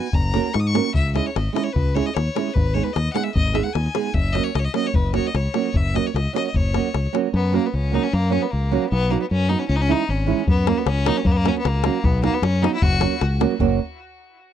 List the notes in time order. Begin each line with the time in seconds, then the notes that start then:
Already playing: G#5
0.13 F#1 A#5, davul low
0.34 A#3 C#4 F#4 A#4, davul high
0.46 davul high
0.54 G#2 C#6, davul high
0.60 D#6
0.67 C#6
0.74 A#3 C#4 F#4 A#4, davul high
0.85 davul high
0.94 C#2 E5, davul low
1.14 G#3 C#4 E4 G#4 D#5, davul high
1.27 C#5, davul high
1.36 G#1 D#5, davul high
1.53 G#3 C#4 E4 G#4 D#5, davul high
1.64 C#5, davul high
1.73 C#2 B4, davul low
1.95 G#3 C#4 E4 G#4 C#5, davul high
2.06 D#5, davul high
2.14 D#2 C#5, davul high
2.35 G#3 C#4 E4 G#4, davul high
2.48 davul high
2.54 G#1 B4, davul low
2.74 G#3 B3 D#4 G#4 C#5
2.83 B4, davul high
2.93 D#2 D#5, davul high
3.13 G#3 B3 D#4 G#4 F#5, davul high
3.24 E5, davul high
3.35 G#1 D#5, davul low
3.47 davul high
3.53 G#3 B3 D#4 G#4 E5, davul high
3.64 F#5, davul high
3.73 D#2 G#5, davul high
3.86 davul high
3.94 G#3 B3 D#4 G#4, davul high
4.06 davul high
4.14 F#1 E5, davul low
4.33 F#3 A#3 C#4 F#4 D#5, davul high
4.44 C#5
4.55 C#2 D#5, davul high
4.59 C#5
4.65 D#5
4.74 F#3 A#3 C#4 F#4 D#5, davul high
4.85 C#5, davul high
4.94 F#1 B4, davul low
5.13 F#3 A#3 C#4 F#4 C#5, davul high
5.25 D#5, davul high
5.34 C#2 C#5, davul high
5.54 F#3 A#3 C#4 F#4, davul high
5.65 davul high
5.74 F#1 E5, davul low
5.94 F#3 A#3 C#4 F#4 D#5, davul high
6.07 C#5, davul high
6.14 C#2 D#5, davul high
6.33 F#3 A#3 C#4 F#4 D#5, davul high
6.47 D#5, davul high
6.54 F#1 C#5, davul low
6.74 F#3 A#3 C#4 F#4, davul high
6.85 davul high
6.94 C#2, davul high
7.06 davul high
7.13 F#3 A#3 C#4 F#4, davul high
7.34 F#2 B3
7.52 F#3 A#3 C#4 F#4
7.66 B3
7.74 C#2 C#4
7.92 F#3 A#3 C#4 D#4 F#4
8.04 C#4
8.13 F#2 A#3
8.30 F#3 A#3 C#4 F#4
8.42 B3
8.51 C#2 A#3
8.71 F#3 A#3 C#4 F#4
8.89 B1 B3
9.10 F#3 A#3 B3 D#4 F#4
9.22 B3
9.31 F#2 C#4
9.49 F#3 B3 D#4 F#4
9.59 C#4
9.68 C#2 C#4
9.76 D#4
9.81 C#4
9.88 E3 G#3 C#4 D#4 E4
10.09 G#1 C#4
10.26 E3 G#3 C#4 E4
10.47 F#2 B3, davul low
10.66 F#3 A#3 C#4 F#4, davul high
10.78 B3, davul high
10.86 C#2 C#4, davul high
10.98 davul high
11.05 F#3 A#3 C#4 D#4 F#4, davul high
11.18 C#4
11.25 F#2 A#3, davul low
11.32 B3
11.37 A#3
11.44 F#3 A#3 C#4 F#4, davul high
11.56 B3, davul high
11.65 C#2 A#3, davul high
11.75 davul high
11.83 F#3 A#3 C#4 F#4, davul high
12.04 B1 B3, davul low
12.22 F#3 A#3 B3 D#4 F#4, davul high
12.34 B3, davul high
12.42 F#2 C#4, davul high
12.54 davul high
12.62 F#3 B3 D#4 F#4, davul high
12.75 E4
12.82 F#1 F#4, davul low
12.93 davul high
13.00 F#3 A#3 C#4 F#4, davul high
13.12 davul high
13.21 C#2, davul high
13.40 F#3 A#3 C#4 F#4, davul high
13.51 davul high
13.59 F#1 F#3 A#3 C#4 F#4, davul low